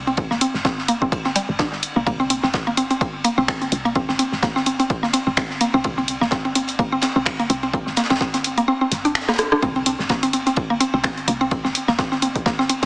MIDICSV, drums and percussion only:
0, 0, Header, 1, 2, 480
1, 0, Start_track
1, 0, Tempo, 472441
1, 180, Time_signature, 4, 2, 24, 8
1, 13061, End_track
2, 0, Start_track
2, 0, Title_t, "Drums"
2, 74, Note_on_c, 9, 51, 41
2, 174, Note_off_c, 9, 51, 0
2, 174, Note_on_c, 9, 51, 92
2, 179, Note_on_c, 9, 36, 126
2, 276, Note_off_c, 9, 51, 0
2, 281, Note_off_c, 9, 36, 0
2, 314, Note_on_c, 9, 38, 44
2, 415, Note_off_c, 9, 38, 0
2, 418, Note_on_c, 9, 42, 100
2, 420, Note_on_c, 9, 51, 70
2, 520, Note_off_c, 9, 42, 0
2, 521, Note_off_c, 9, 51, 0
2, 552, Note_on_c, 9, 38, 47
2, 654, Note_off_c, 9, 38, 0
2, 658, Note_on_c, 9, 51, 94
2, 659, Note_on_c, 9, 36, 119
2, 660, Note_on_c, 9, 38, 119
2, 760, Note_off_c, 9, 36, 0
2, 760, Note_off_c, 9, 51, 0
2, 762, Note_off_c, 9, 38, 0
2, 799, Note_on_c, 9, 38, 46
2, 898, Note_on_c, 9, 42, 96
2, 898, Note_on_c, 9, 51, 76
2, 900, Note_off_c, 9, 38, 0
2, 1000, Note_off_c, 9, 42, 0
2, 1000, Note_off_c, 9, 51, 0
2, 1033, Note_on_c, 9, 36, 66
2, 1135, Note_off_c, 9, 36, 0
2, 1139, Note_on_c, 9, 36, 122
2, 1144, Note_on_c, 9, 51, 91
2, 1240, Note_off_c, 9, 36, 0
2, 1246, Note_off_c, 9, 51, 0
2, 1263, Note_on_c, 9, 38, 38
2, 1364, Note_off_c, 9, 38, 0
2, 1378, Note_on_c, 9, 42, 96
2, 1381, Note_on_c, 9, 38, 38
2, 1384, Note_on_c, 9, 51, 66
2, 1480, Note_off_c, 9, 42, 0
2, 1483, Note_off_c, 9, 38, 0
2, 1485, Note_off_c, 9, 51, 0
2, 1615, Note_on_c, 9, 38, 119
2, 1618, Note_on_c, 9, 51, 91
2, 1619, Note_on_c, 9, 36, 122
2, 1716, Note_off_c, 9, 38, 0
2, 1720, Note_off_c, 9, 51, 0
2, 1721, Note_off_c, 9, 36, 0
2, 1751, Note_on_c, 9, 38, 46
2, 1853, Note_off_c, 9, 38, 0
2, 1856, Note_on_c, 9, 51, 74
2, 1858, Note_on_c, 9, 42, 98
2, 1957, Note_off_c, 9, 51, 0
2, 1960, Note_off_c, 9, 42, 0
2, 2099, Note_on_c, 9, 36, 123
2, 2102, Note_on_c, 9, 51, 97
2, 2201, Note_off_c, 9, 36, 0
2, 2203, Note_off_c, 9, 51, 0
2, 2241, Note_on_c, 9, 51, 41
2, 2338, Note_on_c, 9, 42, 97
2, 2339, Note_off_c, 9, 51, 0
2, 2339, Note_on_c, 9, 51, 66
2, 2440, Note_off_c, 9, 42, 0
2, 2440, Note_off_c, 9, 51, 0
2, 2470, Note_on_c, 9, 38, 40
2, 2571, Note_off_c, 9, 38, 0
2, 2576, Note_on_c, 9, 51, 90
2, 2579, Note_on_c, 9, 36, 116
2, 2581, Note_on_c, 9, 38, 105
2, 2677, Note_off_c, 9, 51, 0
2, 2681, Note_off_c, 9, 36, 0
2, 2683, Note_off_c, 9, 38, 0
2, 2713, Note_on_c, 9, 51, 47
2, 2815, Note_off_c, 9, 51, 0
2, 2818, Note_on_c, 9, 42, 90
2, 2819, Note_on_c, 9, 51, 67
2, 2920, Note_off_c, 9, 42, 0
2, 2920, Note_off_c, 9, 51, 0
2, 2949, Note_on_c, 9, 51, 41
2, 2953, Note_on_c, 9, 42, 29
2, 3050, Note_off_c, 9, 51, 0
2, 3054, Note_off_c, 9, 42, 0
2, 3059, Note_on_c, 9, 36, 121
2, 3060, Note_on_c, 9, 51, 83
2, 3160, Note_off_c, 9, 36, 0
2, 3162, Note_off_c, 9, 51, 0
2, 3294, Note_on_c, 9, 51, 70
2, 3299, Note_on_c, 9, 42, 96
2, 3395, Note_off_c, 9, 51, 0
2, 3400, Note_off_c, 9, 42, 0
2, 3538, Note_on_c, 9, 38, 106
2, 3539, Note_on_c, 9, 26, 105
2, 3539, Note_on_c, 9, 36, 120
2, 3543, Note_on_c, 9, 51, 84
2, 3640, Note_off_c, 9, 38, 0
2, 3641, Note_off_c, 9, 26, 0
2, 3641, Note_off_c, 9, 36, 0
2, 3645, Note_off_c, 9, 51, 0
2, 3674, Note_on_c, 9, 42, 30
2, 3776, Note_off_c, 9, 42, 0
2, 3779, Note_on_c, 9, 42, 94
2, 3786, Note_on_c, 9, 51, 63
2, 3881, Note_off_c, 9, 42, 0
2, 3888, Note_off_c, 9, 51, 0
2, 3916, Note_on_c, 9, 51, 44
2, 4016, Note_off_c, 9, 51, 0
2, 4016, Note_on_c, 9, 51, 79
2, 4019, Note_on_c, 9, 36, 115
2, 4117, Note_off_c, 9, 51, 0
2, 4121, Note_off_c, 9, 36, 0
2, 4153, Note_on_c, 9, 38, 47
2, 4255, Note_off_c, 9, 38, 0
2, 4257, Note_on_c, 9, 51, 62
2, 4258, Note_on_c, 9, 42, 90
2, 4359, Note_off_c, 9, 51, 0
2, 4360, Note_off_c, 9, 42, 0
2, 4392, Note_on_c, 9, 38, 40
2, 4494, Note_off_c, 9, 38, 0
2, 4496, Note_on_c, 9, 38, 113
2, 4499, Note_on_c, 9, 36, 117
2, 4501, Note_on_c, 9, 51, 86
2, 4597, Note_off_c, 9, 38, 0
2, 4601, Note_off_c, 9, 36, 0
2, 4603, Note_off_c, 9, 51, 0
2, 4635, Note_on_c, 9, 38, 49
2, 4734, Note_on_c, 9, 51, 68
2, 4736, Note_off_c, 9, 38, 0
2, 4738, Note_on_c, 9, 42, 89
2, 4836, Note_off_c, 9, 51, 0
2, 4839, Note_off_c, 9, 42, 0
2, 4873, Note_on_c, 9, 42, 31
2, 4974, Note_off_c, 9, 42, 0
2, 4977, Note_on_c, 9, 51, 84
2, 4979, Note_on_c, 9, 36, 114
2, 5078, Note_off_c, 9, 51, 0
2, 5081, Note_off_c, 9, 36, 0
2, 5112, Note_on_c, 9, 38, 39
2, 5214, Note_off_c, 9, 38, 0
2, 5214, Note_on_c, 9, 51, 72
2, 5216, Note_on_c, 9, 38, 41
2, 5219, Note_on_c, 9, 42, 92
2, 5316, Note_off_c, 9, 51, 0
2, 5317, Note_off_c, 9, 38, 0
2, 5321, Note_off_c, 9, 42, 0
2, 5454, Note_on_c, 9, 51, 89
2, 5458, Note_on_c, 9, 26, 99
2, 5459, Note_on_c, 9, 36, 116
2, 5463, Note_on_c, 9, 38, 113
2, 5556, Note_off_c, 9, 51, 0
2, 5560, Note_off_c, 9, 26, 0
2, 5561, Note_off_c, 9, 36, 0
2, 5565, Note_off_c, 9, 38, 0
2, 5593, Note_on_c, 9, 38, 49
2, 5695, Note_off_c, 9, 38, 0
2, 5696, Note_on_c, 9, 51, 71
2, 5697, Note_on_c, 9, 42, 91
2, 5798, Note_off_c, 9, 51, 0
2, 5799, Note_off_c, 9, 42, 0
2, 5935, Note_on_c, 9, 51, 93
2, 5939, Note_on_c, 9, 36, 116
2, 6036, Note_off_c, 9, 51, 0
2, 6041, Note_off_c, 9, 36, 0
2, 6078, Note_on_c, 9, 51, 49
2, 6177, Note_off_c, 9, 51, 0
2, 6177, Note_on_c, 9, 51, 68
2, 6178, Note_on_c, 9, 42, 88
2, 6279, Note_off_c, 9, 42, 0
2, 6279, Note_off_c, 9, 51, 0
2, 6317, Note_on_c, 9, 38, 37
2, 6410, Note_off_c, 9, 38, 0
2, 6410, Note_on_c, 9, 38, 123
2, 6418, Note_on_c, 9, 51, 89
2, 6419, Note_on_c, 9, 36, 110
2, 6512, Note_off_c, 9, 38, 0
2, 6520, Note_off_c, 9, 36, 0
2, 6520, Note_off_c, 9, 51, 0
2, 6551, Note_on_c, 9, 51, 45
2, 6653, Note_off_c, 9, 51, 0
2, 6659, Note_on_c, 9, 42, 85
2, 6665, Note_on_c, 9, 51, 66
2, 6761, Note_off_c, 9, 42, 0
2, 6767, Note_off_c, 9, 51, 0
2, 6783, Note_on_c, 9, 51, 46
2, 6793, Note_on_c, 9, 42, 31
2, 6885, Note_off_c, 9, 51, 0
2, 6895, Note_off_c, 9, 42, 0
2, 6898, Note_on_c, 9, 36, 112
2, 6898, Note_on_c, 9, 51, 80
2, 7000, Note_off_c, 9, 36, 0
2, 7000, Note_off_c, 9, 51, 0
2, 7128, Note_on_c, 9, 51, 82
2, 7134, Note_on_c, 9, 38, 110
2, 7139, Note_on_c, 9, 42, 91
2, 7229, Note_off_c, 9, 51, 0
2, 7236, Note_off_c, 9, 38, 0
2, 7240, Note_off_c, 9, 42, 0
2, 7373, Note_on_c, 9, 38, 103
2, 7379, Note_on_c, 9, 26, 107
2, 7379, Note_on_c, 9, 36, 116
2, 7474, Note_off_c, 9, 38, 0
2, 7480, Note_off_c, 9, 26, 0
2, 7480, Note_off_c, 9, 36, 0
2, 7514, Note_on_c, 9, 42, 32
2, 7615, Note_off_c, 9, 42, 0
2, 7615, Note_on_c, 9, 51, 75
2, 7619, Note_on_c, 9, 42, 87
2, 7717, Note_off_c, 9, 51, 0
2, 7720, Note_off_c, 9, 42, 0
2, 7752, Note_on_c, 9, 51, 39
2, 7854, Note_off_c, 9, 51, 0
2, 7859, Note_on_c, 9, 36, 118
2, 7867, Note_on_c, 9, 51, 65
2, 7960, Note_off_c, 9, 36, 0
2, 7969, Note_off_c, 9, 51, 0
2, 7994, Note_on_c, 9, 38, 38
2, 8092, Note_on_c, 9, 51, 60
2, 8096, Note_off_c, 9, 38, 0
2, 8098, Note_on_c, 9, 42, 91
2, 8099, Note_on_c, 9, 38, 85
2, 8164, Note_off_c, 9, 51, 0
2, 8164, Note_on_c, 9, 51, 62
2, 8166, Note_off_c, 9, 38, 0
2, 8166, Note_on_c, 9, 38, 82
2, 8200, Note_off_c, 9, 42, 0
2, 8226, Note_off_c, 9, 38, 0
2, 8226, Note_on_c, 9, 38, 93
2, 8231, Note_off_c, 9, 51, 0
2, 8231, Note_on_c, 9, 51, 66
2, 8285, Note_off_c, 9, 38, 0
2, 8285, Note_off_c, 9, 51, 0
2, 8285, Note_on_c, 9, 38, 88
2, 8285, Note_on_c, 9, 51, 63
2, 8337, Note_off_c, 9, 38, 0
2, 8337, Note_on_c, 9, 38, 115
2, 8339, Note_on_c, 9, 36, 113
2, 8348, Note_off_c, 9, 51, 0
2, 8348, Note_on_c, 9, 51, 82
2, 8439, Note_off_c, 9, 38, 0
2, 8440, Note_off_c, 9, 36, 0
2, 8450, Note_off_c, 9, 51, 0
2, 8473, Note_on_c, 9, 42, 51
2, 8474, Note_on_c, 9, 38, 42
2, 8575, Note_off_c, 9, 38, 0
2, 8575, Note_off_c, 9, 42, 0
2, 8577, Note_on_c, 9, 51, 65
2, 8579, Note_on_c, 9, 42, 86
2, 8679, Note_off_c, 9, 51, 0
2, 8681, Note_off_c, 9, 42, 0
2, 8713, Note_on_c, 9, 42, 34
2, 8814, Note_off_c, 9, 42, 0
2, 9058, Note_on_c, 9, 42, 88
2, 9059, Note_on_c, 9, 38, 38
2, 9062, Note_on_c, 9, 51, 64
2, 9160, Note_off_c, 9, 38, 0
2, 9160, Note_off_c, 9, 42, 0
2, 9163, Note_off_c, 9, 51, 0
2, 9194, Note_on_c, 9, 42, 33
2, 9296, Note_off_c, 9, 42, 0
2, 9297, Note_on_c, 9, 38, 89
2, 9298, Note_on_c, 9, 26, 108
2, 9301, Note_on_c, 9, 51, 62
2, 9359, Note_off_c, 9, 51, 0
2, 9359, Note_on_c, 9, 51, 61
2, 9361, Note_off_c, 9, 38, 0
2, 9361, Note_on_c, 9, 38, 87
2, 9400, Note_off_c, 9, 26, 0
2, 9426, Note_off_c, 9, 38, 0
2, 9426, Note_on_c, 9, 38, 84
2, 9433, Note_on_c, 9, 37, 51
2, 9437, Note_off_c, 9, 51, 0
2, 9437, Note_on_c, 9, 51, 64
2, 9485, Note_off_c, 9, 51, 0
2, 9485, Note_on_c, 9, 51, 65
2, 9488, Note_off_c, 9, 38, 0
2, 9488, Note_on_c, 9, 38, 87
2, 9532, Note_off_c, 9, 51, 0
2, 9532, Note_on_c, 9, 51, 73
2, 9534, Note_off_c, 9, 37, 0
2, 9539, Note_on_c, 9, 37, 80
2, 9539, Note_on_c, 9, 42, 90
2, 9590, Note_off_c, 9, 38, 0
2, 9633, Note_off_c, 9, 51, 0
2, 9640, Note_off_c, 9, 37, 0
2, 9640, Note_off_c, 9, 42, 0
2, 9672, Note_on_c, 9, 37, 80
2, 9774, Note_off_c, 9, 37, 0
2, 9779, Note_on_c, 9, 36, 122
2, 9780, Note_on_c, 9, 51, 84
2, 9880, Note_off_c, 9, 36, 0
2, 9882, Note_off_c, 9, 51, 0
2, 9913, Note_on_c, 9, 51, 44
2, 10014, Note_off_c, 9, 51, 0
2, 10019, Note_on_c, 9, 42, 95
2, 10023, Note_on_c, 9, 51, 61
2, 10120, Note_off_c, 9, 42, 0
2, 10124, Note_off_c, 9, 51, 0
2, 10155, Note_on_c, 9, 38, 44
2, 10254, Note_on_c, 9, 51, 85
2, 10257, Note_off_c, 9, 38, 0
2, 10259, Note_on_c, 9, 36, 118
2, 10263, Note_on_c, 9, 38, 115
2, 10356, Note_off_c, 9, 51, 0
2, 10361, Note_off_c, 9, 36, 0
2, 10364, Note_off_c, 9, 38, 0
2, 10393, Note_on_c, 9, 42, 53
2, 10394, Note_on_c, 9, 51, 46
2, 10495, Note_off_c, 9, 42, 0
2, 10496, Note_off_c, 9, 51, 0
2, 10498, Note_on_c, 9, 51, 74
2, 10499, Note_on_c, 9, 42, 91
2, 10600, Note_off_c, 9, 42, 0
2, 10600, Note_off_c, 9, 51, 0
2, 10634, Note_on_c, 9, 42, 33
2, 10637, Note_on_c, 9, 51, 44
2, 10733, Note_off_c, 9, 51, 0
2, 10733, Note_on_c, 9, 51, 83
2, 10736, Note_off_c, 9, 42, 0
2, 10739, Note_on_c, 9, 36, 118
2, 10834, Note_off_c, 9, 51, 0
2, 10841, Note_off_c, 9, 36, 0
2, 10977, Note_on_c, 9, 51, 72
2, 10978, Note_on_c, 9, 42, 95
2, 11078, Note_off_c, 9, 51, 0
2, 11080, Note_off_c, 9, 42, 0
2, 11212, Note_on_c, 9, 38, 105
2, 11213, Note_on_c, 9, 51, 91
2, 11219, Note_on_c, 9, 26, 110
2, 11219, Note_on_c, 9, 36, 122
2, 11314, Note_off_c, 9, 38, 0
2, 11314, Note_off_c, 9, 51, 0
2, 11321, Note_off_c, 9, 26, 0
2, 11321, Note_off_c, 9, 36, 0
2, 11354, Note_on_c, 9, 42, 33
2, 11456, Note_off_c, 9, 42, 0
2, 11459, Note_on_c, 9, 42, 94
2, 11462, Note_on_c, 9, 51, 67
2, 11560, Note_off_c, 9, 42, 0
2, 11563, Note_off_c, 9, 51, 0
2, 11591, Note_on_c, 9, 51, 42
2, 11692, Note_off_c, 9, 51, 0
2, 11696, Note_on_c, 9, 51, 91
2, 11699, Note_on_c, 9, 36, 127
2, 11798, Note_off_c, 9, 51, 0
2, 11801, Note_off_c, 9, 36, 0
2, 11833, Note_on_c, 9, 38, 48
2, 11934, Note_off_c, 9, 38, 0
2, 11938, Note_on_c, 9, 42, 97
2, 11941, Note_on_c, 9, 51, 64
2, 12040, Note_off_c, 9, 42, 0
2, 12043, Note_off_c, 9, 51, 0
2, 12069, Note_on_c, 9, 38, 45
2, 12171, Note_off_c, 9, 38, 0
2, 12177, Note_on_c, 9, 38, 121
2, 12179, Note_on_c, 9, 36, 127
2, 12179, Note_on_c, 9, 51, 88
2, 12279, Note_off_c, 9, 38, 0
2, 12280, Note_off_c, 9, 36, 0
2, 12280, Note_off_c, 9, 51, 0
2, 12310, Note_on_c, 9, 38, 42
2, 12412, Note_off_c, 9, 38, 0
2, 12415, Note_on_c, 9, 51, 72
2, 12418, Note_on_c, 9, 42, 98
2, 12516, Note_off_c, 9, 51, 0
2, 12520, Note_off_c, 9, 42, 0
2, 12553, Note_on_c, 9, 36, 63
2, 12553, Note_on_c, 9, 42, 32
2, 12654, Note_off_c, 9, 42, 0
2, 12655, Note_off_c, 9, 36, 0
2, 12659, Note_on_c, 9, 36, 123
2, 12660, Note_on_c, 9, 51, 78
2, 12661, Note_on_c, 9, 38, 94
2, 12760, Note_off_c, 9, 36, 0
2, 12762, Note_off_c, 9, 38, 0
2, 12762, Note_off_c, 9, 51, 0
2, 12801, Note_on_c, 9, 38, 48
2, 12898, Note_on_c, 9, 42, 98
2, 12902, Note_on_c, 9, 51, 65
2, 12903, Note_off_c, 9, 38, 0
2, 13000, Note_off_c, 9, 42, 0
2, 13004, Note_off_c, 9, 51, 0
2, 13061, End_track
0, 0, End_of_file